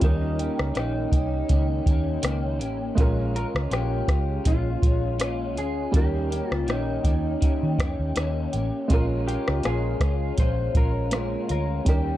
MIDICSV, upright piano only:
0, 0, Header, 1, 2, 480
1, 0, Start_track
1, 0, Tempo, 740741
1, 12, Time_signature, 4, 2, 24, 8
1, 7887, End_track
2, 0, Start_track
2, 0, Title_t, "Upright piano"
2, 0, Program_c, 0, 0
2, 0, Control_c, 0, 64, 127
2, 0, Note_on_c, 0, 55, 58
2, 4, Note_on_c, 0, 61, 50
2, 17, Note_on_c, 0, 63, 49
2, 21, Control_c, 0, 64, 0
2, 26, Note_on_c, 0, 70, 68
2, 119, Control_c, 0, 64, 127
2, 1896, Note_off_c, 0, 55, 0
2, 1900, Note_off_c, 0, 61, 0
2, 1906, Note_off_c, 0, 63, 0
2, 1911, Note_off_c, 0, 70, 0
2, 1914, Note_on_c, 0, 56, 69
2, 1926, Note_on_c, 0, 61, 60
2, 1934, Note_on_c, 0, 65, 63
2, 1939, Control_c, 0, 64, 0
2, 1946, Note_on_c, 0, 70, 81
2, 2053, Control_c, 0, 64, 127
2, 3815, Note_off_c, 0, 56, 0
2, 3820, Note_off_c, 0, 61, 0
2, 3825, Note_off_c, 0, 65, 0
2, 3831, Note_off_c, 0, 70, 0
2, 3834, Note_on_c, 0, 55, 62
2, 3846, Note_on_c, 0, 61, 55
2, 3855, Note_on_c, 0, 63, 49
2, 3857, Control_c, 0, 64, 0
2, 3865, Note_on_c, 0, 70, 68
2, 3972, Control_c, 0, 64, 127
2, 5735, Note_off_c, 0, 55, 0
2, 5741, Note_off_c, 0, 61, 0
2, 5745, Note_off_c, 0, 63, 0
2, 5750, Note_off_c, 0, 70, 0
2, 5754, Note_on_c, 0, 56, 65
2, 5764, Note_on_c, 0, 61, 60
2, 5773, Note_on_c, 0, 65, 63
2, 5776, Control_c, 0, 64, 0
2, 5789, Note_on_c, 0, 70, 81
2, 5905, Control_c, 0, 64, 127
2, 7175, Note_off_c, 0, 56, 0
2, 7181, Note_off_c, 0, 61, 0
2, 7185, Note_off_c, 0, 65, 0
2, 7193, Note_off_c, 0, 70, 0
2, 7204, Note_on_c, 0, 56, 44
2, 7212, Note_on_c, 0, 61, 38
2, 7219, Note_on_c, 0, 65, 39
2, 7224, Note_on_c, 0, 70, 49
2, 7673, Note_off_c, 0, 61, 0
2, 7676, Note_on_c, 0, 55, 58
2, 7682, Note_on_c, 0, 61, 51
2, 7687, Note_off_c, 0, 56, 0
2, 7694, Note_off_c, 0, 65, 0
2, 7695, Note_off_c, 0, 70, 0
2, 7696, Note_on_c, 0, 63, 51
2, 7697, Control_c, 0, 64, 0
2, 7704, Note_on_c, 0, 70, 69
2, 7794, Control_c, 0, 64, 127
2, 7887, Note_off_c, 0, 55, 0
2, 7887, Note_off_c, 0, 61, 0
2, 7887, Note_off_c, 0, 63, 0
2, 7887, Note_off_c, 0, 70, 0
2, 7887, End_track
0, 0, End_of_file